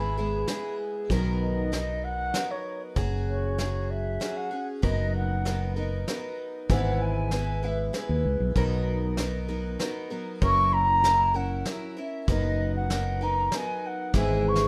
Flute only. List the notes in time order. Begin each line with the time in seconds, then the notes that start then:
Already playing: B5
1.41 D#5
2.04 F#5
2.51 C#5
3.28 C#5
3.90 E5
4.36 F#5
4.85 D#5
5.15 F#5
5.78 D#5
6.70 F#5
7.01 G#5
7.65 E5
10.44 C#6
10.73 A#5
11.35 F#5
11.98 E5
12.30 D#5
12.76 F#5
13.23 A#5
13.55 G#5
13.86 F#5
14.17 G#5
14.48 C#6